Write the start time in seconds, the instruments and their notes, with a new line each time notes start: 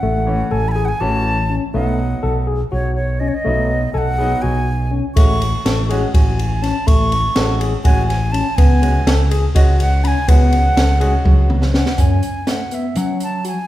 Already playing: flute F#5
0.03 fingered electric bass A1, tine electric piano A3
0.26 grand piano E3 A3 C#4
0.51 fingered electric bass A1, tine electric piano A4, flute G#5
0.68 flute G#5 B5
0.76 tine electric piano G#4
0.85 flute F#5 G#5
1.00 fingered electric bass A1, grand piano E3 A3 C#4, tine electric piano F#4, flute A5
1.50 tine electric piano C#4
1.74 fingered electric bass B1, grand piano F#3 B3 D#4, tine electric piano A3, flute F#5
2.23 fingered electric bass B1, tine electric piano A4
2.47 tine electric piano G#4
2.72 fingered electric bass B1, tine electric piano F#4, flute C#5
2.95 flute C#5
3.20 tine electric piano C#4, flute D#5
3.28 flute C#5
3.34 flute D#5
3.45 fingered electric bass B1, grand piano F#3 B3 D#4, tine electric piano A3
3.93 fingered electric bass B1, tine electric piano A4, flute G#5
3.98 flute F#5
4.18 grand piano F#3 B3 D#4, tine electric piano G#4
4.42 fingered electric bass B1, tine electric piano F#4, flute G#5
4.91 tine electric piano C#4
5.15 fingered electric bass A1, grand piano G#3 C#4 F#4, tine electric piano A3, flute C#6, kick, ride
5.42 ride
5.65 fingered electric bass A1, tine electric piano A4, snare, ride
5.89 grand piano G#3 C#4 F#4, tine electric piano G#4, ride
6.13 fingered electric bass A1, tine electric piano F#4, flute G#5, kick, ride
6.39 ride
6.62 tine electric piano C#4, flute A5, snare, ride
6.87 fingered electric bass A1, tine electric piano A3, flute C#6, kick, ride
7.12 ride
7.36 fingered electric bass A1, grand piano G#3 C#4 F#4, tine electric piano A4, snare, ride
7.60 tine electric piano G#4, ride
7.84 fingered electric bass A1, grand piano G#3 C#4 F#4, tine electric piano F#4, flute G#5, kick, ride
8.07 flute G#5, snare, ride
8.32 tine electric piano C#4, flute A5, ride
8.55 fingered electric bass C#2, tine electric piano B3, flute G#5, kick, ride
8.82 grand piano G#3 C#4 F#4, ride
9.07 fingered electric bass C#2, tine electric piano A4, snare, ride
9.31 tine electric piano G#4, ride
9.55 fingered electric bass C#2, grand piano G#3 C#4 F#4, tine electric piano F#4, flute D#5, kick, ride
9.80 flute F#5, ride
10.04 tine electric piano C#4, flute G#5 B5, ride
10.28 fingered electric bass C#2, grand piano G#3 C#4 F#4, tine electric piano B3, flute F#5, kick, ride
10.53 ride
10.77 fingered electric bass C#2, tine electric piano A4, snare, ride
11.00 grand piano G#3 C#4 F#4, tine electric piano G#4, ride
11.25 fingered electric bass C#2, tine electric piano F#4, kick, high tom
11.50 mid tom
11.62 snare
11.74 tine electric piano C#4, flute F#5, snare
11.86 snare
11.98 fingered electric bass F#2, tine electric piano C#4, flute G#5, kick, closed hi-hat
12.23 closed hi-hat
12.47 tine electric piano A3, flute F#5, snare, closed hi-hat
12.71 tine electric piano B3, flute E5, closed hi-hat
12.96 fingered electric bass F#3, tine electric piano C#4, flute F#5, closed hi-hat
13.20 flute A5, closed hi-hat
13.45 tine electric piano F#4, flute G#5, closed hi-hat